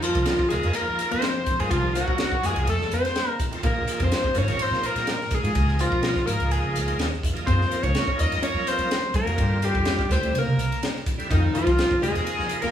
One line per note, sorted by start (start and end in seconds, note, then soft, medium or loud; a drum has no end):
0.02 0.43 F3 medium
0.02 0.51 F3 medium
0.02 0.43 A#3 medium
0.02 0.44 D#4 medium
0.02 0.48 F4 loud
0.02 0.44 A#4 medium
0.02 muted upright bass stroke soft
0.02 hi-hat pedal medium
0.02 ride medium
0.15 0.25 C2 medium
0.15 kick medium
0.15 ride medium
0.26 snare loud
0.26 ride medium
0.39 muted upright bass stroke soft
0.39 kick medium
0.49 0.61 D#2 medium
0.49 1.31 F3 medium
0.49 0.73 G#3 medium
0.49 1.31 A#3 medium
0.49 1.31 D#4 medium
0.49 0.76 G#4 medium
0.49 1.32 A#4 medium
0.49 hi-hat pedal medium
0.49 ride medium
0.63 0.73 F2 medium
0.63 ride medium
0.73 1.11 A#3 medium
0.73 1.11 A#4 loud
0.73 ride medium
0.88 0.97 F3 medium
0.99 muted upright bass stroke soft
0.99 hi-hat pedal medium
0.99 ride medium
1.11 1.41 F3 medium
1.11 1.59 C4 medium
1.11 1.61 C5 loud
1.11 ride medium
1.22 snare loud
1.22 ride medium
1.46 1.57 F3 medium
1.46 kick medium
1.46 hi-hat pedal medium
1.46 ride medium
1.58 1.69 G2 medium
1.58 1.68 F3 medium
1.58 1.71 G#3 medium
1.58 1.69 A#3 medium
1.58 1.69 D#4 medium
1.58 1.70 G#4 medium
1.58 1.70 A#4 medium
1.58 ride medium
1.70 2.01 C2 medium
1.70 1.91 F3 medium
1.70 1.93 F3 medium
1.70 1.91 A#3 medium
1.70 1.91 D#4 medium
1.70 1.93 F4 medium
1.70 1.92 G#4 medium
1.70 kick medium
1.70 ride medium
1.95 2.35 F#3 medium
1.95 2.40 F#3 medium
1.95 2.36 A#3 medium
1.95 2.36 D#4 medium
1.95 2.47 F#4 loud
1.95 2.36 A#4 medium
1.95 hi-hat pedal medium
1.95 ride medium
2.08 2.27 A#1 medium
2.08 kick medium
2.18 snare loud
2.18 ride medium
2.32 kick medium
2.42 2.53 F#2 medium
2.42 2.67 F3 medium
2.42 2.68 G#3 medium
2.42 2.67 A#3 medium
2.42 2.67 D#4 medium
2.42 2.67 G#4 medium
2.42 2.68 G#4 medium
2.42 hi-hat pedal medium
2.42 ride medium
2.55 2.65 C2 medium
2.55 ride medium
2.67 2.77 F2 loud
2.67 2.90 A3 medium
2.67 2.91 A4 medium
2.67 ride medium
2.79 2.89 F3 medium
2.79 snare soft
2.91 3.10 F2 medium
2.91 3.37 C4 medium
2.91 3.37 C5 medium
2.91 hi-hat pedal medium
2.91 ride medium
3.05 snare soft
3.05 ride soft
3.15 snare loud
3.15 ride medium
3.39 kick medium
3.39 hi-hat pedal medium
3.39 ride medium
3.51 3.61 A3 medium
3.51 3.61 C4 medium
3.51 3.61 D#4 medium
3.51 3.62 F4 medium
3.51 muted upright bass stroke soft
3.51 ride medium
3.63 3.83 A#1 loud
3.63 3.83 F3 medium
3.63 3.83 A#3 medium
3.63 3.98 A#3 medium
3.63 3.84 D#4 medium
3.63 3.84 G#4 medium
3.63 3.99 A#4 medium
3.63 kick loud
3.63 ride medium
3.87 4.27 F3 medium
3.87 4.28 A#3 medium
3.87 4.28 D#4 medium
3.87 4.28 G#4 medium
3.87 muted upright bass stroke soft
3.87 hi-hat pedal medium
3.87 ride medium
4.00 4.09 F2 medium
4.00 4.34 C4 medium
4.00 kick medium
4.00 ride medium
4.04 4.35 C5 loud
4.12 snare loud
4.12 ride medium
4.24 muted upright bass stroke soft
4.24 kick medium
4.34 4.45 G#1 medium
4.34 5.15 F3 medium
4.34 5.15 A#3 medium
4.34 4.61 C#4 medium
4.34 5.15 D#4 medium
4.34 5.16 A#4 medium
4.34 hi-hat pedal medium
4.34 ride medium
4.38 4.63 C#5 loud
4.47 4.57 A#1 medium
4.47 snare soft
4.47 ride medium
4.59 4.85 C4 medium
4.59 4.87 C5 medium
4.59 muted upright bass stroke soft
4.59 ride medium
4.70 4.80 A#2 medium
4.70 snare soft
4.83 5.33 A#3 medium
4.83 5.36 A#4 loud
4.83 muted upright bass stroke soft
4.83 hi-hat pedal medium
4.83 ride medium
4.95 5.24 A#2 medium
4.95 snare soft
4.95 ride medium
5.07 snare medium
5.07 ride medium
5.21 snare soft
5.31 5.41 A#2 medium
5.31 5.80 G#3 medium
5.31 5.80 G#4 medium
5.31 kick medium
5.31 hi-hat pedal medium
5.31 ride medium
5.43 5.52 G#2 medium
5.43 5.53 F3 medium
5.43 5.53 A#3 medium
5.43 5.53 D#4 medium
5.43 5.54 G#4 medium
5.43 ride medium
5.55 5.85 C#2 medium
5.55 5.75 F3 medium
5.55 5.75 A#3 medium
5.55 5.75 D#4 medium
5.55 5.76 G#4 medium
5.55 kick medium
5.55 ride medium
5.68 snare soft
5.79 6.19 F3 medium
5.79 6.27 F3 medium
5.79 6.20 A#3 medium
5.79 6.20 D#4 medium
5.79 6.27 F4 medium
5.79 6.20 A#4 medium
5.79 hi-hat pedal medium
5.79 ride medium
5.92 6.11 B1 medium
5.92 kick medium
6.03 snare loud
6.03 ride medium
6.16 kick medium
6.16 snare soft
6.26 6.37 G#1 medium
6.26 7.06 F3 medium
6.26 7.07 A#3 medium
6.26 6.53 A#3 medium
6.26 7.07 D#4 medium
6.26 7.08 G#4 medium
6.26 6.53 A#4 medium
6.26 hi-hat pedal medium
6.26 ride medium
6.40 6.59 C#2 medium
6.40 ride soft
6.51 7.00 G#3 medium
6.51 6.99 G#4 medium
6.51 ride medium
6.64 6.73 C#3 medium
6.74 6.96 C#2 medium
6.74 hi-hat pedal medium
6.74 ride medium
6.88 ride medium
6.98 7.20 D#2 medium
6.98 snare loud
6.98 ride medium
7.13 snare soft
7.23 7.45 F2 medium
7.23 kick medium
7.23 hi-hat pedal medium
7.23 ride medium
7.33 7.43 F3 medium
7.33 7.44 A#3 medium
7.33 7.44 D#4 medium
7.33 7.45 G#4 medium
7.33 ride medium
7.44 7.66 F#2 medium
7.44 7.66 F3 medium
7.44 7.66 A#3 medium
7.44 7.83 C4 medium
7.44 7.67 D#4 medium
7.44 7.67 G#4 medium
7.44 7.84 C5 loud
7.44 kick medium
7.44 ride medium
7.61 snare soft
7.68 8.10 F3 medium
7.68 8.10 A#3 medium
7.68 8.11 D#4 medium
7.68 8.11 A#4 medium
7.68 hi-hat pedal medium
7.68 ride medium
7.83 7.93 C#2 medium
7.83 8.19 C#4 medium
7.83 8.21 C#5 loud
7.83 kick medium
7.83 ride medium
7.95 snare loud
7.95 ride medium
8.07 muted upright bass stroke soft
8.07 kick medium
8.16 8.29 F2 medium
8.16 8.97 F3 medium
8.16 8.98 A#3 medium
8.16 8.98 D#4 medium
8.16 8.42 D#4 medium
8.16 8.98 A#4 medium
8.16 hi-hat pedal medium
8.16 ride medium
8.20 8.42 D#5 loud
8.31 8.40 F#2 medium
8.31 snare soft
8.31 ride medium
8.42 8.67 C#4 medium
8.42 8.69 C#5 loud
8.42 muted upright bass stroke soft
8.42 ride medium
8.54 8.64 F#3 medium
8.66 9.15 C4 medium
8.66 9.15 C5 loud
8.66 muted upright bass stroke soft
8.66 hi-hat pedal medium
8.66 ride medium
8.78 9.07 F#3 medium
8.78 ride medium
8.91 snare loud
8.91 ride medium
9.14 9.24 F#3 medium
9.14 9.59 A#3 medium
9.14 9.66 A#4 medium
9.14 kick medium
9.14 hi-hat pedal medium
9.14 ride medium
9.26 9.36 F2 medium
9.26 9.36 F3 medium
9.26 9.36 A#3 medium
9.26 9.36 D#4 medium
9.26 9.37 F#4 medium
9.26 ride medium
9.36 9.68 G2 medium
9.36 9.57 D3 medium
9.36 9.58 G3 medium
9.36 9.58 C4 medium
9.36 9.58 F4 medium
9.36 kick medium
9.36 ride medium
9.61 10.02 D3 medium
9.61 10.02 G3 medium
9.61 10.13 G3 medium
9.61 10.02 C4 medium
9.61 10.03 F4 medium
9.61 10.13 G4 medium
9.61 hi-hat pedal medium
9.61 ride medium
9.75 9.94 F2 medium
9.75 kick medium
9.85 snare loud
9.85 ride medium
9.99 kick medium
9.99 snare soft
10.09 10.20 D2 medium
10.09 10.33 D3 medium
10.09 10.33 G3 medium
10.09 10.34 C4 medium
10.09 10.34 E4 medium
10.09 10.35 C5 medium
10.09 hi-hat pedal medium
10.09 ride medium
10.13 10.35 C4 medium
10.21 10.31 D2 medium
10.21 ride medium
10.33 10.43 C2 medium
10.33 ride medium
10.38 10.81 A#3 medium
10.38 10.81 A#4 medium
10.46 10.55 C3 medium
10.57 10.77 C2 medium
10.57 hi-hat pedal medium
10.57 ride medium
10.72 ride medium
10.83 snare loud
10.83 ride medium
10.96 snare soft
11.06 kick medium
11.06 hi-hat pedal medium
11.06 ride medium
11.18 11.27 D3 medium
11.18 11.27 G3 medium
11.18 11.28 C4 medium
11.18 11.28 E4 medium
11.18 muted upright bass stroke soft
11.18 ride medium
11.29 11.50 F2 loud
11.29 11.49 C3 medium
11.29 11.53 D#3 medium
11.29 11.49 F3 medium
11.29 11.50 A#3 medium
11.29 11.50 D#4 medium
11.29 11.53 D#4 medium
11.29 kick medium
11.29 ride medium
11.52 11.93 C3 medium
11.52 11.93 F3 medium
11.52 11.99 F3 medium
11.52 11.94 A#3 medium
11.52 11.94 D#4 medium
11.52 11.99 F4 loud
11.52 muted upright bass stroke soft
11.52 hi-hat pedal medium
11.52 ride medium
11.67 11.76 C2 medium
11.67 kick medium
11.67 ride medium
11.78 snare loud
11.78 ride medium
11.91 muted upright bass stroke soft
11.91 kick medium
12.00 12.12 D#2 medium
12.00 12.71 C3 medium
12.00 12.71 F3 medium
12.00 12.58 G#3 medium
12.00 12.71 A#3 medium
12.00 12.71 D#4 medium
12.00 12.63 G#4 loud
12.00 hi-hat pedal medium
12.00 ride medium
12.15 12.24 F2 medium
12.15 snare soft
12.15 ride medium
12.27 ride medium
12.39 12.48 F3 medium
12.39 snare soft
12.49 muted upright bass stroke soft
12.49 hi-hat pedal medium
12.49 ride medium
12.61 12.71 F3 medium
12.61 12.71 A#3 medium
12.61 12.71 A#4 loud
12.61 snare soft
12.61 ride medium